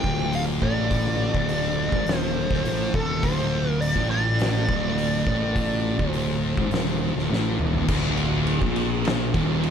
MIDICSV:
0, 0, Header, 1, 6, 480
1, 0, Start_track
1, 0, Key_signature, -1, "minor"
1, 0, Tempo, 581395
1, 750, Time_signature, 4, 2, 24, 8
1, 8010, End_track
2, 0, Start_track
2, 0, Title_t, "Lead electric guitar"
2, 0, Program_c, 0, 29
2, 0, Note_on_c, 0, 79, 99
2, 287, Note_off_c, 0, 79, 0
2, 290, Note_on_c, 0, 77, 86
2, 352, Note_off_c, 0, 77, 0
2, 523, Note_on_c, 0, 74, 106
2, 1794, Note_off_c, 0, 74, 0
2, 1794, Note_on_c, 0, 72, 106
2, 2437, Note_on_c, 0, 69, 80
2, 2492, Note_off_c, 0, 72, 0
2, 2674, Note_on_c, 0, 72, 92
2, 2680, Note_off_c, 0, 69, 0
2, 3054, Note_off_c, 0, 72, 0
2, 3054, Note_on_c, 0, 70, 92
2, 3149, Note_off_c, 0, 70, 0
2, 3152, Note_on_c, 0, 74, 81
2, 3382, Note_off_c, 0, 74, 0
2, 3391, Note_on_c, 0, 74, 90
2, 5043, Note_off_c, 0, 74, 0
2, 5043, Note_on_c, 0, 72, 90
2, 6004, Note_off_c, 0, 72, 0
2, 8010, End_track
3, 0, Start_track
3, 0, Title_t, "Synth drone"
3, 0, Program_c, 1, 95
3, 0, Note_on_c, 1, 50, 75
3, 0, Note_on_c, 1, 65, 85
3, 0, Note_on_c, 1, 69, 68
3, 6486, Note_off_c, 1, 69, 0
3, 6489, Note_off_c, 1, 50, 0
3, 6492, Note_off_c, 1, 65, 0
3, 8010, End_track
4, 0, Start_track
4, 0, Title_t, "Distorted electric guitar"
4, 0, Program_c, 2, 30
4, 29, Note_on_c, 2, 38, 100
4, 502, Note_off_c, 2, 38, 0
4, 506, Note_on_c, 2, 45, 98
4, 1096, Note_off_c, 2, 45, 0
4, 1100, Note_on_c, 2, 38, 105
4, 1577, Note_off_c, 2, 38, 0
4, 1583, Note_on_c, 2, 44, 102
4, 1695, Note_off_c, 2, 44, 0
4, 1699, Note_on_c, 2, 39, 117
4, 2052, Note_off_c, 2, 39, 0
4, 2056, Note_on_c, 2, 38, 97
4, 2175, Note_off_c, 2, 38, 0
4, 2187, Note_on_c, 2, 45, 98
4, 2421, Note_off_c, 2, 45, 0
4, 2433, Note_on_c, 2, 39, 104
4, 2664, Note_off_c, 2, 39, 0
4, 2673, Note_on_c, 2, 38, 117
4, 3272, Note_off_c, 2, 38, 0
4, 3272, Note_on_c, 2, 45, 90
4, 3865, Note_off_c, 2, 45, 0
4, 3874, Note_on_c, 2, 38, 97
4, 4344, Note_off_c, 2, 38, 0
4, 4348, Note_on_c, 2, 45, 104
4, 4939, Note_off_c, 2, 45, 0
4, 4942, Note_on_c, 2, 38, 110
4, 5420, Note_off_c, 2, 38, 0
4, 5423, Note_on_c, 2, 44, 97
4, 5539, Note_off_c, 2, 44, 0
4, 5542, Note_on_c, 2, 39, 98
4, 5902, Note_off_c, 2, 39, 0
4, 5907, Note_on_c, 2, 38, 99
4, 6024, Note_off_c, 2, 38, 0
4, 6031, Note_on_c, 2, 45, 110
4, 6266, Note_off_c, 2, 45, 0
4, 6272, Note_on_c, 2, 39, 107
4, 6507, Note_off_c, 2, 39, 0
4, 6514, Note_on_c, 2, 38, 119
4, 7108, Note_off_c, 2, 38, 0
4, 7121, Note_on_c, 2, 46, 87
4, 7711, Note_off_c, 2, 46, 0
4, 7716, Note_on_c, 2, 39, 100
4, 8010, Note_off_c, 2, 39, 0
4, 8010, End_track
5, 0, Start_track
5, 0, Title_t, "Fingered electric bass"
5, 0, Program_c, 3, 33
5, 32, Note_on_c, 3, 26, 88
5, 478, Note_off_c, 3, 26, 0
5, 511, Note_on_c, 3, 33, 97
5, 1076, Note_off_c, 3, 33, 0
5, 1108, Note_on_c, 3, 26, 83
5, 1555, Note_off_c, 3, 26, 0
5, 1587, Note_on_c, 3, 32, 92
5, 1699, Note_off_c, 3, 32, 0
5, 1709, Note_on_c, 3, 27, 98
5, 2043, Note_off_c, 3, 27, 0
5, 2069, Note_on_c, 3, 26, 97
5, 2180, Note_off_c, 3, 26, 0
5, 2186, Note_on_c, 3, 33, 88
5, 2411, Note_off_c, 3, 33, 0
5, 2428, Note_on_c, 3, 27, 100
5, 2651, Note_off_c, 3, 27, 0
5, 2667, Note_on_c, 3, 26, 92
5, 3236, Note_off_c, 3, 26, 0
5, 3268, Note_on_c, 3, 33, 95
5, 3837, Note_off_c, 3, 33, 0
5, 3870, Note_on_c, 3, 26, 88
5, 4319, Note_off_c, 3, 26, 0
5, 4349, Note_on_c, 3, 33, 101
5, 4919, Note_off_c, 3, 33, 0
5, 4949, Note_on_c, 3, 26, 76
5, 5400, Note_off_c, 3, 26, 0
5, 5429, Note_on_c, 3, 32, 99
5, 5539, Note_off_c, 3, 32, 0
5, 5544, Note_on_c, 3, 27, 93
5, 5884, Note_off_c, 3, 27, 0
5, 5908, Note_on_c, 3, 26, 88
5, 6023, Note_off_c, 3, 26, 0
5, 6030, Note_on_c, 3, 33, 86
5, 6256, Note_off_c, 3, 33, 0
5, 6268, Note_on_c, 3, 27, 98
5, 6495, Note_off_c, 3, 27, 0
5, 6514, Note_on_c, 3, 26, 92
5, 7082, Note_off_c, 3, 26, 0
5, 7112, Note_on_c, 3, 34, 102
5, 7680, Note_off_c, 3, 34, 0
5, 7715, Note_on_c, 3, 27, 86
5, 8010, Note_off_c, 3, 27, 0
5, 8010, End_track
6, 0, Start_track
6, 0, Title_t, "Drums"
6, 34, Note_on_c, 9, 36, 94
6, 117, Note_off_c, 9, 36, 0
6, 273, Note_on_c, 9, 46, 57
6, 355, Note_off_c, 9, 46, 0
6, 512, Note_on_c, 9, 36, 103
6, 595, Note_off_c, 9, 36, 0
6, 751, Note_on_c, 9, 36, 115
6, 756, Note_on_c, 9, 46, 57
6, 833, Note_off_c, 9, 36, 0
6, 838, Note_off_c, 9, 46, 0
6, 1111, Note_on_c, 9, 36, 106
6, 1193, Note_off_c, 9, 36, 0
6, 1227, Note_on_c, 9, 46, 58
6, 1309, Note_off_c, 9, 46, 0
6, 1588, Note_on_c, 9, 36, 101
6, 1671, Note_off_c, 9, 36, 0
6, 1705, Note_on_c, 9, 46, 62
6, 1728, Note_on_c, 9, 38, 105
6, 1788, Note_off_c, 9, 46, 0
6, 1811, Note_off_c, 9, 38, 0
6, 2069, Note_on_c, 9, 36, 117
6, 2093, Note_on_c, 9, 38, 36
6, 2152, Note_off_c, 9, 36, 0
6, 2176, Note_off_c, 9, 38, 0
6, 2189, Note_on_c, 9, 46, 63
6, 2272, Note_off_c, 9, 46, 0
6, 2428, Note_on_c, 9, 36, 109
6, 2510, Note_off_c, 9, 36, 0
6, 2667, Note_on_c, 9, 46, 64
6, 2668, Note_on_c, 9, 36, 115
6, 2750, Note_off_c, 9, 46, 0
6, 2751, Note_off_c, 9, 36, 0
6, 3151, Note_on_c, 9, 46, 56
6, 3234, Note_off_c, 9, 46, 0
6, 3268, Note_on_c, 9, 36, 82
6, 3351, Note_off_c, 9, 36, 0
6, 3624, Note_on_c, 9, 46, 51
6, 3647, Note_on_c, 9, 38, 114
6, 3707, Note_off_c, 9, 46, 0
6, 3730, Note_off_c, 9, 38, 0
6, 3869, Note_on_c, 9, 36, 107
6, 3952, Note_off_c, 9, 36, 0
6, 4111, Note_on_c, 9, 46, 59
6, 4194, Note_off_c, 9, 46, 0
6, 4348, Note_on_c, 9, 36, 108
6, 4430, Note_off_c, 9, 36, 0
6, 4589, Note_on_c, 9, 36, 113
6, 4591, Note_on_c, 9, 46, 62
6, 4672, Note_off_c, 9, 36, 0
6, 4673, Note_off_c, 9, 46, 0
6, 4949, Note_on_c, 9, 36, 108
6, 5031, Note_off_c, 9, 36, 0
6, 5064, Note_on_c, 9, 46, 55
6, 5146, Note_off_c, 9, 46, 0
6, 5428, Note_on_c, 9, 36, 115
6, 5511, Note_off_c, 9, 36, 0
6, 5541, Note_on_c, 9, 46, 59
6, 5564, Note_on_c, 9, 38, 105
6, 5623, Note_off_c, 9, 46, 0
6, 5646, Note_off_c, 9, 38, 0
6, 5931, Note_on_c, 9, 38, 32
6, 6013, Note_off_c, 9, 38, 0
6, 6051, Note_on_c, 9, 38, 68
6, 6133, Note_off_c, 9, 38, 0
6, 6267, Note_on_c, 9, 45, 97
6, 6350, Note_off_c, 9, 45, 0
6, 6392, Note_on_c, 9, 43, 80
6, 6474, Note_off_c, 9, 43, 0
6, 6508, Note_on_c, 9, 49, 127
6, 6512, Note_on_c, 9, 36, 121
6, 6590, Note_off_c, 9, 49, 0
6, 6594, Note_off_c, 9, 36, 0
6, 6746, Note_on_c, 9, 51, 74
6, 6829, Note_off_c, 9, 51, 0
6, 6990, Note_on_c, 9, 51, 98
6, 7072, Note_off_c, 9, 51, 0
6, 7114, Note_on_c, 9, 36, 98
6, 7196, Note_off_c, 9, 36, 0
6, 7231, Note_on_c, 9, 51, 74
6, 7314, Note_off_c, 9, 51, 0
6, 7470, Note_on_c, 9, 51, 97
6, 7494, Note_on_c, 9, 38, 116
6, 7553, Note_off_c, 9, 51, 0
6, 7576, Note_off_c, 9, 38, 0
6, 7714, Note_on_c, 9, 36, 112
6, 7715, Note_on_c, 9, 51, 77
6, 7796, Note_off_c, 9, 36, 0
6, 7797, Note_off_c, 9, 51, 0
6, 7954, Note_on_c, 9, 51, 106
6, 8010, Note_off_c, 9, 51, 0
6, 8010, End_track
0, 0, End_of_file